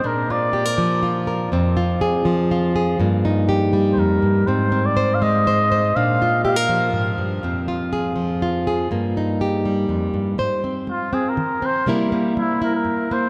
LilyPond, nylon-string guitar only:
\new Staff \with { instrumentName = "Nylon-string guitar" } { \time 3/4 \key f \dorian \tempo 4 = 122 << { d'8 f'8 g'16 bes'8. f'8 bes'8 | c'8 f'8 aes'4 f'8 aes'8 | bes8 ees'8 g'2 | c'8 c'8 c''4 c''8 c''8 |
d'8 f'8 g'16 bes'4.~ bes'16 | c'8 f'8 aes'4 f'8 aes'8 | bes8 ees'8 g'2 | c''8 c'4 c'4 c'8 |
<g bes e' bes'>8 bes4 e'4 bes8 | } \\ { bes,4. f4. | f,4. f4. | g,4. g8 f,8 g,8 | aes,4. aes4. |
bes,4. f8 aes,8 g,8 | f,4. f4. | g,4. g8 f,8 g,8 | aes,4 aes4 ees4 |
c4 g4 g,4 | } >> }